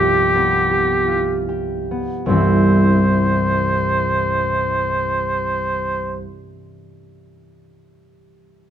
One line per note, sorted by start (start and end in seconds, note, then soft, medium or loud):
0.00 2.04 C2 soft
0.00 2.28 G2 soft
0.00 2.34 F3 soft
0.00 0.34 B3 soft
0.00 1.07 F4 soft
0.00 1.49 G4 soft
0.00 0.70 G4 soft
0.35 1.90 B3 soft
0.71 1.48 G4 soft
1.08 2.34 F4 soft
1.49 5.39 G4 soft
1.91 2.35 B3 soft
2.26 6.22 C2 soft
2.26 6.22 G2 soft
2.26 6.22 G3 soft
2.26 6.23 C4 soft
2.26 6.23 E4 soft
2.26 6.20 C5 soft
2.32 6.22 E3 soft